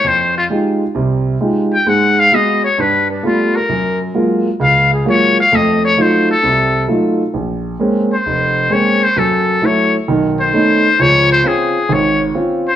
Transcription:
0.04 F2 C5
0.37 F4
0.50 G#3 D#4 F4 G4
0.95 C2 C3
1.40 G#3 D#4 F4 G4
1.74 G5
1.87 G#2 G#3 F#5
2.19 F5
2.32 G#3 B3 F#4 D#5
2.64 C#5
2.78 G2 B4
3.10 D4
3.23 G3 A3 B3 F4
3.56 A#4
3.69 F#2
4.14 F#3 G#3 A#3 F4
4.60 C#2 F5
4.94 G#4
5.05 F#3 G#3 A#3 F4 C#5
5.40 F5
5.52 F2 A3 D#5
5.85 C#5
5.97 F#3 A3 D#4 F4
6.02 C5
6.31 A4
6.43 C2 C3
6.88 F#3 A3 D#4 F4
7.34 A#1
7.80 G#3 A#3 C4 C#4
8.13 C5
8.26 F1
8.70 G#3 A#3 C4 C#4 C#5
9.04 C5
9.16 F#2 F#3 A4
9.62 F#3 A3 E4 C#5
10.08 B1 D#3
10.40 C5
10.53 A3 B3 C#4 D#4
10.99 C#2 F3 C#5
11.32 C5
11.44 C4 C#4 F4 G#4
11.89 G#1 C#5
12.35 C4 C#4 F4
12.68 C5

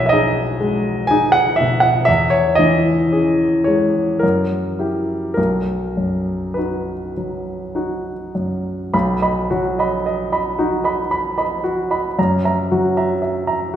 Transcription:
Already playing: B1 B2 B4 C#5 D#5 E5
0.06 D#5 E5
0.12 D#4 G#4
0.61 G#3
1.07 D#4 G#4 G#5
1.32 F#5
1.56 B2 E5
1.80 F#5
2.05 E2 E5
2.30 C#5
2.55 E3 D#5
3.12 C#4 G#4
3.64 G#3 C#5
4.19 F#2 A#4
4.79 E4 G4
5.34 B1 A#4
5.97 F#2
6.54 D#4 B4
6.58 F#4
7.17 F#3
7.75 D#4 F#4
8.35 F#2
8.94 B1 B5
9.22 D#5 B5
9.50 F#3 F#4
9.79 D#5 B5
10.06 D#5
10.32 D#5 B5
10.59 D#4 F#4
10.84 D#5 B5
11.11 B5
11.38 D#5 B5
11.64 F#4
11.91 D#5 B5
12.19 F#2 A#5
12.45 E5 A#5
12.71 F#3 F#4
12.97 E5 A#5
13.22 E5
13.47 E5 A#5

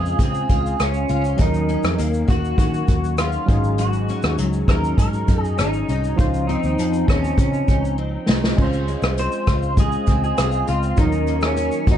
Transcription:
Already playing: F2 C#3 G#3 C4 C#4 F4 G#4 C5
0.06 shaker
0.19 C#3 C4, kick, closed hi-hat, shaker
0.23 G#4
0.34 shaker
0.49 C#2 F4, kick, closed hi-hat, shaker
0.66 shaker
0.80 C#2 C#4, cross-stick, closed hi-hat, shaker
0.94 shaker
1.09 C#2 F4, closed hi-hat, shaker
1.24 shaker
1.36 D#2 D#3 F#3 C#4 D#4, kick, closed hi-hat, shaker
1.41 D#4 A#4
1.54 shaker
1.69 C#4, closed hi-hat, shaker
1.83 F2, cross-stick, shaker
1.98 D#2 A#3, closed hi-hat, shaker
2.14 shaker
2.28 D#2 F#4, kick, closed hi-hat, shaker
2.45 shaker
2.58 D#3 C#4 F#4, kick, closed hi-hat, shaker
2.74 shaker
2.88 D#2, kick, closed hi-hat, shaker
3.04 shaker
3.18 C#4 F4, cross-stick, closed hi-hat, shaker
3.32 shaker
3.46 G#1 G#2 F#3 C#4 D#4, kick, closed hi-hat, shaker
3.51 G#4
3.64 shaker
3.78 G#2 F#4, closed hi-hat, shaker
3.93 shaker
4.09 C#4, closed hi-hat, shaker
4.22 D#2, cross-stick, shaker
4.38 C#2 F#3, closed hi-hat, shaker
4.53 shaker
4.68 D#2 D#4 A#4, kick, cross-stick, closed hi-hat, shaker
4.84 shaker
4.98 G#2 C#4 A#4, kick, closed hi-hat, shaker
5.13 shaker
5.28 F#2 D#4, kick, closed hi-hat, shaker
5.41 G#4, shaker
5.58 G#1 C#4 D#4, cross-stick, closed hi-hat, shaker
5.73 shaker
5.89 C2 D#4, closed hi-hat, shaker
6.04 shaker
6.16 C#2 F3 C#4 D#4 F4, kick, closed hi-hat, shaker
6.21 C5
6.34 shaker
6.47 C4 D#4, closed hi-hat, shaker
6.63 D#2, shaker
6.79 F2 F3, closed hi-hat, shaker
6.93 shaker
7.08 D#2 C#4 D#4, kick, cross-stick, closed hi-hat, shaker
7.24 shaker
7.38 C#3 C#4, kick, closed hi-hat, shaker
7.53 shaker
7.68 C#2 D#4, kick, closed hi-hat, shaker
7.85 shaker
7.98 C4
8.29 C2 D#4, snare
8.44 snare
8.56 C#2 G#3 C#4 F4, kick, crash
8.62 C5
8.73 shaker
8.88 G#3, closed hi-hat, shaker
9.02 C2, cross-stick, shaker
9.18 C4 C5, closed hi-hat, shaker
9.32 shaker
9.47 C#2 F4, kick, cross-stick, closed hi-hat, shaker
9.63 shaker
9.77 G#3 G#4, kick, closed hi-hat, shaker
9.92 shaker
10.07 C#2 C4, kick, closed hi-hat, shaker
10.24 G#4, shaker
10.38 C2 F4, cross-stick, closed hi-hat, shaker
10.52 shaker
10.67 C#2 C4 F4, closed hi-hat, shaker
10.83 shaker
10.96 D#2 D#3 F3 C#4 D#4, kick, closed hi-hat, shaker
11.01 F#3 A#4
11.12 shaker
11.27 A#3, closed hi-hat, shaker
11.41 cross-stick, shaker
11.46 C#4
11.56 C#4, closed hi-hat, shaker
11.72 shaker
11.87 D#2 F#4, kick, closed hi-hat, shaker
11.91 D#4

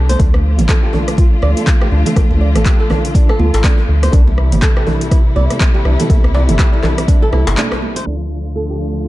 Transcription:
Already playing: C2 C3 E3 G3 D4
0.09 C5, closed hi-hat, muted conga
0.19 D2 D3 F3 A3 D4 F4, kick, closed hi-hat, high conga, djembe bass
0.34 cross-stick, muted conga
0.58 A1, closed hi-hat, high conga, low conga
0.69 A4, kick, cross-stick, clap, closed hi-hat
0.83 G4
0.93 D4, muted conga, djembe tone, high conga, low conga, djembe bass
1.08 cross-stick, closed hi-hat
1.17 F4, kick, closed hi-hat, muted conga, djembe tone
1.42 D2 D5, cross-stick, muted conga
1.56 A4, closed hi-hat, high conga
1.66 kick, clap, closed hi-hat, high conga
1.81 G4, cross-stick, muted conga
1.92 D2 D4
2.06 A4, closed hi-hat, muted conga, high conga, low conga
2.16 kick, cross-stick, closed hi-hat, high conga, djembe tone, djembe bass
2.31 D2, muted conga
2.41 D5
2.55 A1 A4, cross-stick, closed hi-hat, high conga, low conga
2.66 G4, kick, clap, closed hi-hat
2.80 A4
2.90 D4, cross-stick, muted conga, high conga, djembe bass, low conga
3.05 closed hi-hat
3.14 D4, kick, closed hi-hat, muted conga
3.29 A4, cross-stick
3.39 D2 F4, muted conga, high conga
3.54 A1 A4, closed hi-hat, djembe slap
3.64 D4, kick, cross-stick, clap, closed hi-hat, high conga
3.78 muted conga, djembe tone
3.88 D2
4.03 C5, cross-stick, closed hi-hat, muted conga
4.12 C2 C3 E3 G3 D4 E4, kick, closed hi-hat, high conga, djembe bass
4.27 muted conga
4.38 cross-stick
4.52 G1, closed hi-hat, high conga, low conga
4.62 A4, kick, clap, closed hi-hat, muted conga
4.77 G4, cross-stick
4.87 D4, muted conga, high conga, djembe tone, djembe bass, low conga
5.01 closed hi-hat
5.11 E4, kick, cross-stick, closed hi-hat, muted conga, djembe tone
5.36 C2 D5, muted conga
5.50 A4, cross-stick, closed hi-hat, high conga
5.61 kick, clap, closed hi-hat, high conga
5.74 G4, muted conga
5.85 C2 D4, cross-stick
6.00 A4, closed hi-hat, muted conga, high conga, low conga
6.10 kick, closed hi-hat, djembe tone, high conga, djembe bass
6.24 C2, cross-stick, muted conga
6.34 D5, djembe slap
6.49 G1 A4, closed hi-hat, high conga, low conga
6.59 G4, kick, cross-stick, clap, closed hi-hat, djembe slap, muted conga
6.73 A4
6.83 D4, clap, muted conga, djembe tone, high conga, djembe bass, low conga
6.98 cross-stick, closed hi-hat
7.08 D4, kick, closed hi-hat, muted conga
7.22 A4
7.33 C2 E4, cross-stick, muted conga, high conga
7.47 G1 A4, closed hi-hat, djembe slap
7.57 D4, clap, closed hi-hat, high conga
7.71 cross-stick, muted conga, djembe tone
7.82 high conga
7.96 C5, closed hi-hat, muted conga
8.06 D2 D3 F3 A3 D4 F4
8.56 A4
8.70 G4
8.80 D4
9.05 F4

